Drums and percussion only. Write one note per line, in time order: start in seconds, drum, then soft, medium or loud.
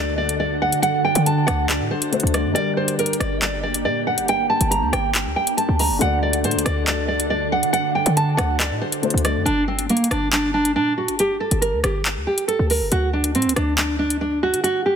0.29 closed hi-hat medium
0.72 closed hi-hat medium
0.83 closed hi-hat medium
1.15 closed hi-hat medium
1.26 closed hi-hat medium
1.48 cross-stick loud
1.48 closed hi-hat medium
1.69 clap loud
1.69 closed hi-hat medium
2.02 closed hi-hat medium
2.13 closed hi-hat medium
2.20 closed hi-hat medium
2.27 closed hi-hat medium
2.34 cross-stick loud
2.34 closed hi-hat medium
2.56 closed hi-hat medium
2.88 closed hi-hat medium
2.99 closed hi-hat soft
3.06 closed hi-hat medium
3.13 closed hi-hat medium
3.21 cross-stick loud
3.21 closed hi-hat medium
3.42 clap loud
3.42 closed hi-hat medium
3.74 closed hi-hat medium
4.18 closed hi-hat medium
4.28 closed hi-hat medium
4.61 closed hi-hat medium
4.72 closed hi-hat medium
4.93 cross-stick loud
4.93 closed hi-hat medium
5.15 clap loud
5.15 closed hi-hat medium
5.47 closed hi-hat medium
5.58 closed hi-hat medium
5.79 open hi-hat medium
6.01 closed hi-hat medium
6.33 closed hi-hat loud
6.44 closed hi-hat soft
6.51 closed hi-hat medium
6.59 closed hi-hat medium
6.66 cross-stick loud
6.66 closed hi-hat medium
6.87 clap loud
6.87 closed hi-hat medium
7.20 closed hi-hat medium
7.63 closed hi-hat medium
7.74 closed hi-hat medium
8.06 closed hi-hat medium
8.17 closed hi-hat medium
8.38 cross-stick loud
8.38 closed hi-hat medium
8.60 clap loud
8.60 closed hi-hat medium
8.92 closed hi-hat medium
9.03 closed hi-hat medium
9.10 closed hi-hat medium
9.18 closed hi-hat medium
9.25 cross-stick loud
9.25 closed hi-hat medium
9.46 closed hi-hat medium
9.79 closed hi-hat medium
9.90 closed hi-hat soft
9.97 closed hi-hat medium
10.04 closed hi-hat medium
10.11 cross-stick loud
10.11 closed hi-hat medium
10.33 clap loud
10.33 closed hi-hat medium
10.65 closed hi-hat medium
11.08 closed hi-hat medium
11.19 closed hi-hat medium
11.51 closed hi-hat medium
11.62 closed hi-hat medium
11.84 cross-stick loud
11.84 closed hi-hat medium
12.05 clap loud
12.05 closed hi-hat medium
12.38 closed hi-hat medium
12.49 closed hi-hat medium
12.70 open hi-hat medium
12.92 closed hi-hat medium
13.24 closed hi-hat medium
13.35 closed hi-hat soft
13.42 closed hi-hat medium
13.49 closed hi-hat medium
13.56 cross-stick loud
13.56 closed hi-hat medium
13.78 clap loud
13.78 closed hi-hat medium
14.10 closed hi-hat medium
14.54 closed hi-hat medium
14.64 closed hi-hat medium